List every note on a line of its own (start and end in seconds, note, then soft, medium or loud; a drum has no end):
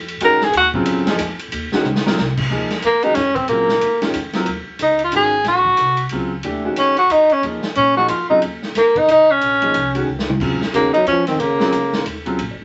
0.00 0.20 F2 medium
0.08 ride medium
0.20 0.53 F#2 medium
0.20 0.40 D#3 medium
0.20 0.39 G#3 medium
0.20 0.40 C#4 medium
0.20 0.40 F#4 medium
0.20 ride medium
0.25 0.46 A#4 loud
0.41 0.56 G#4 loud
0.41 snare soft
0.53 0.85 D#2 medium
0.53 ride medium
0.57 0.69 F#4 loud
0.74 1.05 C#3 medium
0.74 1.05 F#3 medium
0.74 1.05 C4 medium
0.74 1.05 F4 medium
0.74 kick medium
0.85 1.18 F#2 medium
0.85 hi-hat pedal medium
0.85 ride medium
1.07 1.19 F3 medium
1.07 1.19 A#3 medium
1.07 1.19 D#4 medium
1.07 1.19 G#4 medium
1.07 snare medium
1.07 ride medium
1.19 1.51 F2 loud
1.19 hi-hat pedal medium
1.19 ride medium
1.39 ride medium
1.52 1.71 D#2 medium
1.52 ride medium
1.72 1.84 D#3 medium
1.72 1.84 G#3 medium
1.72 1.84 C#4 medium
1.72 1.85 F#4 medium
1.72 muted upright bass stroke soft
1.72 snare medium
1.85 2.04 C#2 medium
1.85 hi-hat pedal medium
1.85 mid tom medium
1.95 snare medium
2.05 2.17 F#3 medium
2.05 2.17 C4 medium
2.05 2.17 F4 medium
2.05 2.17 A#4 medium
2.05 muted upright bass stroke soft
2.05 snare loud
2.18 2.50 C2 loud
2.18 snare medium
2.37 kick medium
2.37 crash medium
2.50 2.83 D#2 medium
2.50 2.69 F3 medium
2.50 2.69 A#3 medium
2.50 2.69 D#4 medium
2.50 2.69 G#4 medium
2.70 snare soft
2.70 ride soft
2.82 3.15 F2 medium
2.82 3.05 A#3 medium
2.82 hi-hat pedal medium
2.82 ride medium
3.03 3.15 D#3 medium
3.03 3.15 G#3 medium
3.03 3.15 C#4 medium
3.03 3.16 D#4 medium
3.03 3.15 F#4 medium
3.03 ride soft
3.15 3.48 F#2 medium
3.15 3.37 C#4 medium
3.15 snare soft
3.15 hi-hat pedal medium
3.15 ride medium
3.36 3.48 C4 medium
3.36 kick soft
3.36 ride soft
3.48 3.80 A#2 medium
3.48 3.67 C#3 medium
3.48 3.68 F#3 soft
3.48 4.11 A#3 medium
3.48 3.68 C4 soft
3.48 3.68 F4 medium
3.48 ride medium
3.69 snare medium
3.81 4.13 F#2 medium
3.81 hi-hat pedal medium
3.81 ride medium
4.02 4.13 D#3 medium
4.02 4.13 G#3 medium
4.02 4.13 C#4 medium
4.02 4.14 F4 medium
4.02 snare medium
4.02 ride soft
4.14 4.46 F2 medium
4.14 hi-hat pedal medium
4.14 ride medium
4.33 4.46 F#3 medium
4.33 4.47 C4 medium
4.33 4.47 F4 medium
4.33 4.47 A#4 medium
4.33 snare soft
4.33 ride soft
4.46 4.66 D#2 medium
4.46 ride medium
4.67 muted upright bass stroke soft
4.79 5.11 C#2 medium
4.79 5.00 D#4 medium
4.79 hi-hat pedal soft
4.79 ride medium
4.99 ride soft
5.04 5.14 F4 medium
5.12 5.44 G#1 medium
5.12 5.31 D#3 medium
5.12 5.31 G#3 medium
5.12 5.31 C#4 medium
5.12 5.32 F#4 medium
5.12 hi-hat pedal medium
5.12 ride medium
5.16 5.45 G#4 medium
5.44 5.77 A#1 medium
5.44 6.09 F#4 medium
5.44 snare soft
5.44 ride medium
5.65 kick soft
5.77 6.10 C2 medium
5.77 hi-hat pedal medium
5.77 ride medium
5.97 ride soft
6.09 6.43 C#2 medium
6.09 6.30 C#3 medium
6.09 6.30 F#3 soft
6.09 6.30 C4 medium
6.09 6.30 F4 medium
6.09 ride medium
6.43 6.76 D#2 medium
6.43 6.63 E3 medium
6.43 6.63 A3 soft
6.43 6.63 D4 soft
6.43 6.63 G4 medium
6.43 ride medium
6.65 6.94 D#3 medium
6.65 6.94 G#3 soft
6.65 6.94 C#4 medium
6.65 6.94 F#4 medium
6.76 7.09 F#2 medium
6.76 6.97 C#4 medium
6.76 hi-hat pedal medium
6.76 ride medium
6.97 7.13 F#4 medium
6.97 ride soft
7.10 7.29 F2 medium
7.10 7.34 D#4 medium
7.10 hi-hat pedal medium
7.10 ride medium
7.29 7.44 C#4 medium
7.29 muted upright bass stroke soft
7.29 ride soft
7.42 7.62 D#2 medium
7.42 7.62 F3 soft
7.42 7.62 A#3 soft
7.42 7.62 D#4 soft
7.42 7.62 G#4 medium
7.42 ride medium
7.62 snare soft
7.75 8.08 A#2 medium
7.75 7.96 C#4 medium
7.75 ride medium
7.96 8.08 F3 medium
7.96 8.08 A#3 medium
7.96 8.08 D#4 medium
7.96 8.09 F#4 medium
7.96 8.08 G#4 medium
8.08 8.41 F#2 medium
8.08 8.28 F4 medium
8.08 hi-hat pedal medium
8.08 ride medium
8.30 8.41 C#3 medium
8.30 8.41 F#3 medium
8.30 8.41 C4 medium
8.30 8.41 D#4 medium
8.30 8.41 F4 medium
8.42 8.75 D#2 medium
8.42 ride medium
8.62 snare soft
8.75 9.07 F2 medium
8.75 8.99 A#3 medium
8.75 snare soft
8.75 hi-hat pedal medium
8.75 ride medium
8.95 9.09 D#4 medium
8.95 kick soft
8.95 ride soft
9.08 9.40 C#2 medium
9.08 9.33 D#4 loud
9.08 hi-hat pedal medium
9.08 ride medium
9.31 10.09 C#4 medium
9.41 9.74 A#1 medium
9.41 ride medium
9.62 9.73 F3 medium
9.62 9.74 A#3 medium
9.62 9.73 D#4 medium
9.62 9.74 G#4 medium
9.62 ride soft
9.74 10.06 C2 medium
9.74 hi-hat pedal medium
9.74 ride medium
9.95 10.06 D#3 medium
9.95 10.07 G#3 medium
9.95 10.07 C#4 medium
9.95 10.07 F#4 medium
9.95 ride soft
10.07 10.39 C#2 medium
10.19 snare medium
10.29 mid tom medium
10.40 10.72 D#2 medium
10.40 10.59 C#3 medium
10.40 10.59 F#3 medium
10.40 10.59 C4 medium
10.40 10.60 F4 medium
10.40 kick medium
10.40 crash medium
10.62 snare soft
10.73 11.05 E2 medium
10.73 10.93 C#3 medium
10.73 10.92 D#3 medium
10.73 10.92 G#3 soft
10.73 10.93 A#3 medium
10.73 10.92 C#4 soft
10.73 10.92 F#4 medium
10.73 hi-hat pedal medium
10.73 ride medium
10.94 11.06 F#3 medium
10.94 11.06 D#4 medium
10.94 ride soft
11.06 11.38 F2 medium
11.06 11.27 F3 medium
11.06 11.26 C#4 medium
11.06 hi-hat pedal medium
11.06 ride medium
11.27 11.41 D#3 medium
11.27 11.41 C4 medium
11.27 snare soft
11.27 ride soft
11.39 11.72 F#2 medium
11.39 12.06 C#3 medium
11.39 12.06 A#3 medium
11.39 ride medium
11.59 11.71 C#3 medium
11.59 11.72 F#3 medium
11.59 11.72 C4 medium
11.59 11.72 F4 medium
11.59 snare medium
11.72 12.05 F2 medium
11.72 hi-hat pedal medium
11.72 ride medium
11.93 snare medium
12.05 12.38 D#2 medium
12.05 ride medium
12.25 12.38 C#3 medium
12.25 12.38 F#3 medium
12.25 12.38 C4 medium
12.25 12.38 F4 medium
12.25 ride soft
12.38 12.50 A#1 medium
12.38 ride medium
12.50 12.61 F#1 medium
12.61 12.64 D#1 medium